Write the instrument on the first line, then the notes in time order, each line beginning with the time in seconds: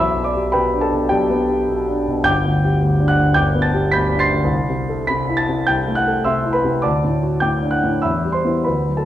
grand piano
Already playing: B1 E5 B5 E6
0.16 B2
0.24 D5 D6
0.35 G4
0.52 B2 B4 G5 B5
0.74 D4
0.81 A4 A5
0.93 B2
1.09 B1 G4 D5 G5
1.30 B3
1.50 G4
1.68 B2
1.88 D4
2.08 B2
2.23 G1 G5 D6 G6
2.45 D2
2.65 G4
2.82 D2
3.00 D4
3.08 F#5 F#6
3.19 D2
3.34 G1 G5 D6 G6
3.55 B3
3.62 A5 A6
3.74 G4
3.92 D2 B5 G6 B6
4.12 D4
4.19 C6 A6 C7
4.30 D2
4.44 C2
4.70 C3
4.89 A4
5.07 C3 B5 B6
5.29 E4
5.37 A5 A6
5.49 C3
5.67 C2 G5 G6
5.88 A3
5.95 F#5 F#6
6.08 A4
6.24 C3 E5 C6 E6
6.45 E4
6.53 B4 B5
6.64 C3
6.82 D2 D5 A5 D6
7.04 A2
7.23 F#4
7.40 A2 G5 D6 G6
7.63 D4
7.71 F#5 F#6
7.83 A2
8.02 E2 E5 B5 E6
8.25 G3
8.32 C5 C6
8.45 B3 E4
8.64 D2 B4 B5
8.88 F#3
8.97 A4 A5